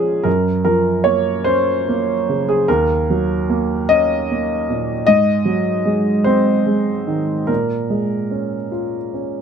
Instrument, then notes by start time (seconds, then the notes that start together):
grand piano
Already playing: A#2 F3 G#3 C#4 F4 G#4
0.23 F#2 A#4
0.65 F3 A#4
1.04 A#3 C#5
1.44 C#4 C5
1.89 A#3
2.29 C#3
2.48 G#4
2.68 D#2 A#4
3.10 F#3
3.50 A#3
3.89 C#4 D#5
4.31 A#3
4.70 A#2
5.07 G#2 D#5
5.45 F#3
5.85 G#3
6.24 C4 C5
6.66 G#3
7.07 D#3
7.47 A#2 A#4
7.90 G#3
8.31 C#4
8.72 F4
9.14 C#4